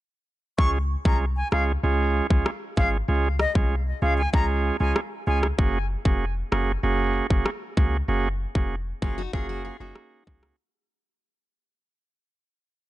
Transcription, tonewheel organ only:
0.58 G#3 C#4 F4 G#4
1.05 G#3 C#4 F4 G#4
1.52 G#3 C#4 F4 G#4
1.83 G#3 C#4 F4 G#4
2.30 G#3 C#4 F4 G#4
2.77 G#3 C#4 F4 G#4
3.08 G#3 C#4 F4 G#4
3.55 G#3 C#4 F4 G#4
4.02 G#3 C#4 F4 G#4
4.33 G#3 C#4 F4 G#4
4.80 G#3 C#4 F4 G#4
5.27 G#3 C#4 F4 G#4
5.58 A#3 C#4 F#4 G#4
6.05 A#3 C#4 F#4 G#4
6.52 A#3 C#4 F#4 G#4
6.83 A#3 C#4 F#4 G#4
7.30 A#3 C#4 F#4 G#4
7.77 A#3 C#4 F#4 G#4
8.08 A#3 C#4 F#4 G#4
8.55 A#3 C#4 F#4 G#4
9.02 A#3 C#4 F#4 G#4
9.33 A#3 C#4 F#4 G#4
9.80 A#3 C#4 F#4 G#4
10.27 A#3 C#4 F#4 G#4

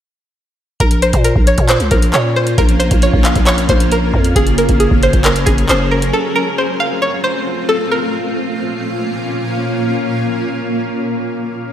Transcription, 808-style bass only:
0.80 A#1
1.13 A#2
1.36 A#1
1.58 A#2
1.80 C#2
1.91 A#1
2.13 A#2
2.58 A#1
2.91 A#1
3.13 A#1
3.36 A#1
3.69 A#1
4.14 F2
4.36 F#1
4.69 F#1
4.91 F#1
5.13 F#1
5.47 F#1
5.69 F#1

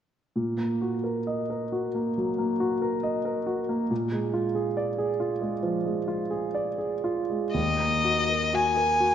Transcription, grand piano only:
0.36 A#2
0.58 A#3
0.81 F#4
1.04 A#4
1.27 D#5
1.50 A#4
1.72 F#4
1.95 A#3
2.18 F#3
2.38 A#3
2.60 F#4
2.82 A#4
3.03 D#5
3.25 A#4
3.47 F#4
3.69 A#3
3.91 A#2
4.12 G#3
4.33 F4
4.55 G#4
4.77 D5
4.98 G#4
5.20 F4
5.41 G#3
5.63 F3
5.85 G#3
6.08 F4
6.30 G#4
6.55 D5
6.78 G#4
7.04 F4
7.30 G#3
7.54 D#2
7.79 A#3
8.04 F#4
8.29 A#4
8.53 F#4
8.77 A#4
9.00 F#4

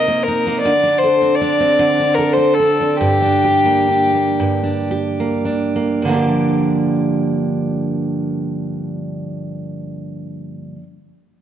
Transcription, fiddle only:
Already playing: D#5
0.23 A#4
0.60 D5
0.98 C5
1.35 D5
2.14 A#4
2.33 C5
2.54 A4
2.97 G4

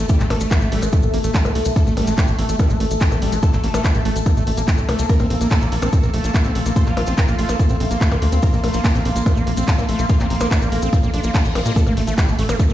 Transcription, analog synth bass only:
0.20 A1
0.30 A1
0.41 A1
0.62 A1
0.72 A1
0.82 A1
1.03 A1
1.14 A1
1.24 A1
1.45 C2
1.55 C2
1.66 C2
1.87 A1
1.97 A1
2.07 A1
2.28 A1
2.39 A1
2.49 A1
2.70 A1
2.80 A1
2.91 A1
3.12 A#1
3.22 A1
3.32 A1
3.53 A1
3.64 A1
3.74 A1
3.95 A1
4.05 A1
4.16 A1
4.37 A1
4.47 A1
4.57 A1
4.78 C2
4.89 C2
4.99 C2
5.20 A#1
5.30 A#1
5.41 A#1
5.62 A#1
5.72 A#1
5.82 A#1
6.03 A#1
6.14 A#1
6.24 A#1
6.45 C2
6.55 A#1
6.66 A#1
6.87 A#1
6.97 A#1
7.07 A#1
7.28 A#1
7.39 A#1
7.49 A#1
7.70 A#1
7.80 A#1
7.91 A#1
8.12 D2
8.22 D2
8.32 D2
8.53 A#1
8.64 A#1
8.74 A#1
8.95 A#1
9.05 A#1
9.16 A#1
9.37 A#1
9.47 A#1
9.57 A#1
9.78 C2
9.89 A#1
9.99 A#1
10.20 A#1
10.30 A#1
10.41 A#1
10.62 A#1
10.72 A#1
10.82 A#1
11.03 A#1
11.14 A#1
11.24 A#1
11.45 A#1
11.55 A#1
11.66 A#2
11.87 A1
11.97 A1
12.07 A1
12.28 A1
12.39 A1
12.49 A1
12.70 A1

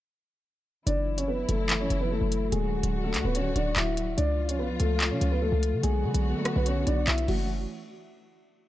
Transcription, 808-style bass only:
0.87 F#1
1.49 F#1
1.90 F#1
2.21 F#1
2.52 D1
2.83 D1
3.14 D2
3.25 D1
3.56 D1
3.76 D1
4.18 C#2
4.59 B1
4.69 C#2
4.80 C#2
5.11 C#3
5.21 C#2
5.42 D2
5.52 C#2
5.73 C#3
5.83 B1
6.04 D3
6.14 B1
6.56 B1
6.87 B1
7.08 B1
7.28 F#1

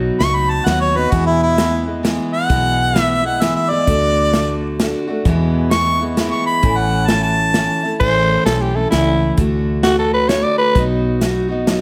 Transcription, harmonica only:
0.20 C#6
0.35 B5
0.50 A5
0.65 F#5
0.81 C#5
0.96 B4
1.11 F#4
1.26 E4
1.43 E4
2.34 F#5
3.01 E5
3.26 F#5
3.41 E5
3.56 E5
3.70 D5
5.71 C#6
6.31 C#6
6.46 B5
6.77 F#5
7.07 A5
7.23 A5

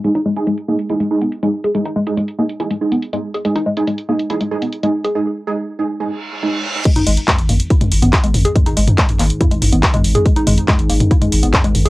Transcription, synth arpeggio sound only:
0.04 G#3
0.15 D#4
0.26 G#3
0.47 G#3
0.68 A#3
0.90 E4
1.00 G#3
1.22 B3
1.43 G#3
1.64 G#4
1.75 G#3
1.85 D#4
1.96 G#3
2.17 G#3
2.38 A#3
2.60 E4
2.70 G#3
2.92 B3
3.13 G#3
3.34 G#4
3.45 G#3
3.56 D#4
3.66 G#3
3.87 G#3
4.09 A#3
4.30 E4
4.41 G#3
4.62 B3
4.83 G#3
5.04 G#4
6.85 G#3
6.96 D#4
7.07 G#3
7.28 G#3
7.49 A#3
7.70 E4
7.81 G#3
8.02 B3
8.24 G#3
8.45 G#4
8.56 G#3
8.66 D#4
8.77 G#3
8.98 G#3
9.19 A#3
9.41 E4
9.51 G#3
9.73 B3
9.94 G#3
10.15 G#4
10.26 G#3
10.36 D#4
10.47 G#3
10.68 G#3
10.90 A#3
11.11 E4
11.22 G#3
11.43 B3
11.64 G#3
11.85 G#4

